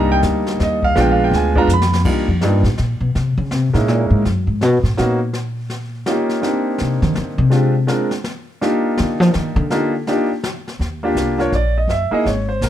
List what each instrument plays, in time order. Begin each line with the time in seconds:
Already playing: upright bass C2, grand piano G3 A#3 D4 D#4 A#5
0.12 grand piano G5
0.22 upright bass D2, snare, hi-hat pedal
0.46 snare
0.60 upright bass D#2, grand piano D#5, snare
0.83 grand piano F5, kick
0.96 upright bass A#1, grand piano G#3 B3 D4 F4, brush sweep, snare
1.00 grand piano G5
1.12 grand piano F5
1.24 grand piano G5
1.31 upright bass D2, snare
1.36 grand piano G#5
1.55 grand piano G#3 B3 D4 F4 A#5, kick
1.67 upright bass F2, hi-hat pedal
1.73 grand piano B5
1.82 snare
1.93 snare
2.05 grand piano G3 A#3 D4 D#4 F4, brush sweep, kick, snare, crash
2.28 upright bass F2
2.41 upright bass G2, grand piano G3 A#3 D4 D#4 F4, snare
2.63 upright bass A2, snare
2.78 upright bass A#2, snare
3.01 upright bass B2
3.15 upright bass C3, brush sweep, snare
3.38 upright bass C#3
3.51 upright bass C3, snare
3.74 upright bass A2, grand piano G#3 A#3 C#4 D#4 E4, snare
3.88 upright bass A#2, snare
4.10 upright bass G#2
4.25 upright bass F#2, brush sweep, snare
4.47 upright bass G#2
4.61 upright bass B2, snare
4.83 upright bass A2, snare
4.97 upright bass A#2, grand piano A#3 B3 C#4 D#4 F#4, snare
5.33 brush sweep, snare
5.70 snare
6.06 grand piano A#3 C#4 D#4 F4 G4, snare
6.29 snare
6.42 grand piano A#3 C4 D4 D#4 G4, brush sweep, snare
6.78 upright bass C3, snare
7.02 upright bass D#3, snare
7.15 upright bass D3, snare
7.38 upright bass C3
7.50 grand piano G#3 C4 D4 F4 G4, brush sweep, snare
7.87 grand piano G#3 C4 D4 F4 A#4, snare
8.11 snare
8.24 snare
8.61 grand piano A#3 D4 D#4 F4 G4, brush sweep, snare
8.98 upright bass D3, snare
9.20 upright bass F3, snare
9.34 upright bass D#3, snare
9.56 upright bass D3
9.70 grand piano A#3 D4 D#4 F4 G4, brush sweep, snare
10.07 grand piano A#3 D4 D#4 F4 G4, snare
10.44 snare
10.68 snare
10.79 upright bass D#2, brush sweep, snare
11.03 grand piano A#3 D4 F4 G4
11.15 upright bass C2, snare, hi-hat pedal
11.38 grand piano A#3 D4 F4 A#4 C#5, snare
11.52 upright bass A#1, grand piano D5, snare
11.78 grand piano D#5
11.88 upright bass F#1, grand piano E5, brush sweep, snare
12.11 grand piano A#3 D#4 E4 G#4 D#5, muted upright bass stroke
12.25 upright bass G#1, grand piano C#5, snare
12.49 grand piano C5
12.61 upright bass A#1, grand piano A#4, snare, hi-hat pedal